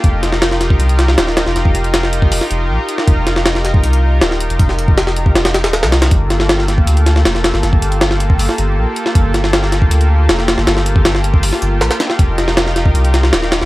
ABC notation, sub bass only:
X:1
M:4/4
L:1/16
Q:1/4=158
K:Fmix
V:1 name="Sub bass" clef=bass
F,,,8 C,,4 E,,,3 F,,, | F,,,8 F,,, z F,,,2 B,,, z3 | F,,,8 C,,4 E,,,3 F,,, | F,,,8 F,,,3 E,,,2 C,,3 |
G,,,8 D,,4 F,,,3 G,,, | G,,,8 G,,, z G,,,2 B,,, z3 | G,,,8 D,,4 F,,,3 G,,, | G,,,8 G,,, z G,,,2 B,,, z3 |
F,,,8 C,,4 E,,,3 F,,, |]